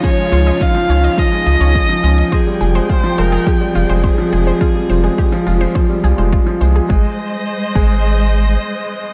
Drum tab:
SH |-x-x-x-x|-x-x-x-x|-x-x-x-x|--------|
BD |o-o-o-o-|o-o-o-o-|o-o-o-o-|o--o----|